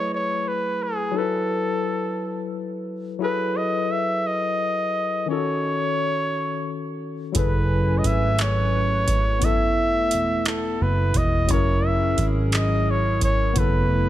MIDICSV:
0, 0, Header, 1, 6, 480
1, 0, Start_track
1, 0, Tempo, 689655
1, 795, Time_signature, 6, 3, 24, 8
1, 9808, End_track
2, 0, Start_track
2, 0, Title_t, "Flugelhorn"
2, 0, Program_c, 0, 56
2, 0, Note_on_c, 0, 73, 105
2, 85, Note_off_c, 0, 73, 0
2, 100, Note_on_c, 0, 73, 94
2, 334, Note_on_c, 0, 71, 100
2, 345, Note_off_c, 0, 73, 0
2, 579, Note_on_c, 0, 68, 90
2, 590, Note_off_c, 0, 71, 0
2, 815, Note_on_c, 0, 69, 87
2, 826, Note_off_c, 0, 68, 0
2, 1765, Note_off_c, 0, 69, 0
2, 2247, Note_on_c, 0, 71, 103
2, 2483, Note_on_c, 0, 75, 95
2, 2494, Note_off_c, 0, 71, 0
2, 2725, Note_on_c, 0, 76, 108
2, 2735, Note_off_c, 0, 75, 0
2, 2973, Note_on_c, 0, 75, 98
2, 2983, Note_off_c, 0, 76, 0
2, 3684, Note_off_c, 0, 75, 0
2, 3687, Note_on_c, 0, 73, 104
2, 4853, Note_off_c, 0, 73, 0
2, 5131, Note_on_c, 0, 71, 91
2, 5556, Note_on_c, 0, 75, 77
2, 5567, Note_off_c, 0, 71, 0
2, 5612, Note_on_c, 0, 76, 110
2, 5622, Note_off_c, 0, 75, 0
2, 5861, Note_on_c, 0, 73, 102
2, 5872, Note_off_c, 0, 76, 0
2, 6576, Note_on_c, 0, 76, 110
2, 6587, Note_off_c, 0, 73, 0
2, 7294, Note_on_c, 0, 69, 89
2, 7305, Note_off_c, 0, 76, 0
2, 7533, Note_on_c, 0, 71, 99
2, 7544, Note_off_c, 0, 69, 0
2, 7778, Note_on_c, 0, 75, 101
2, 7789, Note_off_c, 0, 71, 0
2, 8013, Note_on_c, 0, 73, 93
2, 8023, Note_off_c, 0, 75, 0
2, 8256, Note_on_c, 0, 76, 97
2, 8266, Note_off_c, 0, 73, 0
2, 8537, Note_off_c, 0, 76, 0
2, 8736, Note_on_c, 0, 75, 94
2, 8982, Note_on_c, 0, 73, 94
2, 8992, Note_off_c, 0, 75, 0
2, 9208, Note_off_c, 0, 73, 0
2, 9215, Note_on_c, 0, 73, 98
2, 9454, Note_on_c, 0, 71, 90
2, 9464, Note_off_c, 0, 73, 0
2, 9808, Note_off_c, 0, 71, 0
2, 9808, End_track
3, 0, Start_track
3, 0, Title_t, "Tine electric piano"
3, 0, Program_c, 1, 4
3, 0, Control_c, 1, 64, 127
3, 0, Note_on_c, 1, 54, 60
3, 0, Note_on_c, 1, 57, 55
3, 0, Note_on_c, 1, 64, 57
3, 0, Note_on_c, 1, 68, 57
3, 0, Note_on_c, 1, 71, 68
3, 757, Note_off_c, 1, 54, 0
3, 764, Note_off_c, 1, 64, 0
3, 769, Note_off_c, 1, 68, 0
3, 775, Note_off_c, 1, 57, 0
3, 777, Note_on_c, 1, 54, 66
3, 781, Note_off_c, 1, 71, 0
3, 791, Note_on_c, 1, 63, 49
3, 804, Control_c, 1, 64, 0
3, 808, Note_on_c, 1, 69, 58
3, 823, Note_on_c, 1, 71, 72
3, 838, Note_off_c, 1, 63, 0
3, 838, Note_on_c, 1, 64, 56
3, 915, Control_c, 1, 64, 127
3, 2198, Note_off_c, 1, 54, 0
3, 2214, Note_off_c, 1, 69, 0
3, 2220, Note_on_c, 1, 54, 62
3, 2221, Note_off_c, 1, 71, 0
3, 2222, Note_off_c, 1, 64, 0
3, 2230, Note_on_c, 1, 64, 59
3, 2243, Note_on_c, 1, 68, 61
3, 2245, Control_c, 1, 64, 0
3, 2255, Note_on_c, 1, 69, 62
3, 2266, Note_on_c, 1, 71, 72
3, 2382, Control_c, 1, 64, 127
3, 3639, Note_off_c, 1, 54, 0
3, 3645, Note_off_c, 1, 64, 0
3, 3651, Note_off_c, 1, 68, 0
3, 3657, Note_off_c, 1, 69, 0
3, 3660, Note_on_c, 1, 51, 62
3, 3663, Note_off_c, 1, 71, 0
3, 3677, Note_on_c, 1, 61, 58
3, 3685, Control_c, 1, 64, 0
3, 3692, Note_on_c, 1, 65, 47
3, 3706, Note_on_c, 1, 69, 64
3, 3728, Note_off_c, 1, 65, 0
3, 3737, Note_on_c, 1, 66, 53
3, 3811, Control_c, 1, 64, 127
3, 5080, Note_off_c, 1, 51, 0
3, 5088, Note_off_c, 1, 61, 0
3, 5096, Note_on_c, 1, 54, 64
3, 5102, Note_off_c, 1, 69, 0
3, 5108, Note_on_c, 1, 64, 60
3, 5118, Note_off_c, 1, 66, 0
3, 5120, Note_on_c, 1, 68, 59
3, 5125, Control_c, 1, 64, 0
3, 5131, Note_on_c, 1, 69, 63
3, 5143, Note_on_c, 1, 71, 69
3, 5262, Control_c, 1, 64, 127
3, 6518, Note_off_c, 1, 54, 0
3, 6523, Note_off_c, 1, 64, 0
3, 6529, Note_off_c, 1, 68, 0
3, 6535, Note_off_c, 1, 69, 0
3, 6536, Note_on_c, 1, 59, 60
3, 6541, Note_off_c, 1, 71, 0
3, 6561, Note_on_c, 1, 64, 54
3, 6565, Control_c, 1, 64, 0
3, 6583, Note_on_c, 1, 69, 70
3, 6682, Control_c, 1, 64, 127
3, 7957, Note_off_c, 1, 59, 0
3, 7970, Note_off_c, 1, 64, 0
3, 7980, Note_on_c, 1, 54, 60
3, 7981, Note_off_c, 1, 69, 0
3, 7999, Note_on_c, 1, 61, 55
3, 8004, Control_c, 1, 64, 0
3, 8012, Note_on_c, 1, 64, 60
3, 8028, Note_on_c, 1, 70, 69
3, 8109, Control_c, 1, 64, 127
3, 9399, Note_off_c, 1, 54, 0
3, 9409, Note_off_c, 1, 61, 0
3, 9416, Note_off_c, 1, 64, 0
3, 9420, Note_on_c, 1, 59, 68
3, 9424, Note_off_c, 1, 70, 0
3, 9443, Note_on_c, 1, 64, 60
3, 9445, Control_c, 1, 64, 0
3, 9466, Note_on_c, 1, 69, 73
3, 9553, Control_c, 1, 64, 127
3, 9808, Note_off_c, 1, 59, 0
3, 9808, Note_off_c, 1, 64, 0
3, 9808, Note_off_c, 1, 69, 0
3, 9808, End_track
4, 0, Start_track
4, 0, Title_t, "Analog synth pad"
4, 0, Program_c, 2, 89
4, 5117, Note_on_c, 2, 54, 79
4, 5118, Note_on_c, 2, 61, 72
4, 5119, Note_on_c, 2, 64, 73
4, 5120, Note_on_c, 2, 57, 77
4, 5120, Note_on_c, 2, 71, 87
4, 5120, Note_on_c, 2, 80, 74
4, 6541, Note_off_c, 2, 54, 0
4, 6542, Note_off_c, 2, 61, 0
4, 6542, Note_off_c, 2, 64, 0
4, 6543, Note_off_c, 2, 57, 0
4, 6543, Note_off_c, 2, 71, 0
4, 6543, Note_off_c, 2, 80, 0
4, 6554, Note_on_c, 2, 59, 78
4, 6555, Note_on_c, 2, 64, 84
4, 6557, Note_on_c, 2, 57, 76
4, 7980, Note_off_c, 2, 59, 0
4, 7982, Note_off_c, 2, 57, 0
4, 7993, Note_on_c, 2, 68, 80
4, 7995, Note_on_c, 2, 54, 78
4, 7997, Note_on_c, 2, 70, 89
4, 7999, Note_on_c, 2, 61, 78
4, 9407, Note_off_c, 2, 64, 0
4, 9420, Note_off_c, 2, 54, 0
4, 9420, Note_off_c, 2, 68, 0
4, 9421, Note_off_c, 2, 70, 0
4, 9423, Note_off_c, 2, 61, 0
4, 9441, Note_on_c, 2, 57, 80
4, 9441, Note_on_c, 2, 59, 78
4, 9441, Note_on_c, 2, 64, 90
4, 9808, Note_off_c, 2, 57, 0
4, 9808, Note_off_c, 2, 59, 0
4, 9808, Note_off_c, 2, 64, 0
4, 9808, End_track
5, 0, Start_track
5, 0, Title_t, "Fingered electric bass"
5, 0, Program_c, 3, 33
5, 5124, Note_on_c, 3, 30, 100
5, 5572, Note_off_c, 3, 30, 0
5, 5603, Note_on_c, 3, 32, 91
5, 6561, Note_off_c, 3, 32, 0
5, 6561, Note_on_c, 3, 30, 108
5, 7052, Note_off_c, 3, 30, 0
5, 7052, Note_on_c, 3, 28, 94
5, 7495, Note_off_c, 3, 28, 0
5, 7526, Note_on_c, 3, 30, 95
5, 7737, Note_off_c, 3, 30, 0
5, 7762, Note_on_c, 3, 28, 95
5, 8003, Note_off_c, 3, 28, 0
5, 8003, Note_on_c, 3, 30, 113
5, 8451, Note_off_c, 3, 30, 0
5, 8483, Note_on_c, 3, 32, 95
5, 9411, Note_off_c, 3, 32, 0
5, 9442, Note_on_c, 3, 30, 106
5, 9808, Note_off_c, 3, 30, 0
5, 9808, End_track
6, 0, Start_track
6, 0, Title_t, "Drums"
6, 5114, Note_on_c, 9, 42, 83
6, 5116, Note_on_c, 9, 36, 126
6, 5184, Note_off_c, 9, 42, 0
6, 5186, Note_off_c, 9, 36, 0
6, 5595, Note_on_c, 9, 36, 81
6, 5598, Note_on_c, 9, 42, 72
6, 5665, Note_off_c, 9, 36, 0
6, 5668, Note_off_c, 9, 42, 0
6, 5836, Note_on_c, 9, 42, 62
6, 5847, Note_on_c, 9, 39, 107
6, 5906, Note_off_c, 9, 42, 0
6, 5916, Note_off_c, 9, 39, 0
6, 6316, Note_on_c, 9, 36, 105
6, 6317, Note_on_c, 9, 42, 69
6, 6385, Note_off_c, 9, 36, 0
6, 6387, Note_off_c, 9, 42, 0
6, 6554, Note_on_c, 9, 42, 82
6, 6555, Note_on_c, 9, 36, 121
6, 6623, Note_off_c, 9, 42, 0
6, 6624, Note_off_c, 9, 36, 0
6, 7037, Note_on_c, 9, 42, 73
6, 7107, Note_off_c, 9, 42, 0
6, 7277, Note_on_c, 9, 42, 65
6, 7287, Note_on_c, 9, 39, 113
6, 7346, Note_off_c, 9, 42, 0
6, 7357, Note_off_c, 9, 39, 0
6, 7754, Note_on_c, 9, 36, 99
6, 7755, Note_on_c, 9, 42, 74
6, 7824, Note_off_c, 9, 36, 0
6, 7824, Note_off_c, 9, 42, 0
6, 7994, Note_on_c, 9, 36, 121
6, 7995, Note_on_c, 9, 42, 84
6, 8064, Note_off_c, 9, 36, 0
6, 8064, Note_off_c, 9, 42, 0
6, 8474, Note_on_c, 9, 36, 79
6, 8476, Note_on_c, 9, 42, 70
6, 8544, Note_off_c, 9, 36, 0
6, 8546, Note_off_c, 9, 42, 0
6, 8716, Note_on_c, 9, 42, 60
6, 8727, Note_on_c, 9, 39, 108
6, 8786, Note_off_c, 9, 42, 0
6, 8796, Note_off_c, 9, 39, 0
6, 9196, Note_on_c, 9, 36, 100
6, 9197, Note_on_c, 9, 42, 71
6, 9265, Note_off_c, 9, 36, 0
6, 9267, Note_off_c, 9, 42, 0
6, 9436, Note_on_c, 9, 36, 127
6, 9436, Note_on_c, 9, 42, 84
6, 9505, Note_off_c, 9, 36, 0
6, 9505, Note_off_c, 9, 42, 0
6, 9808, End_track
0, 0, End_of_file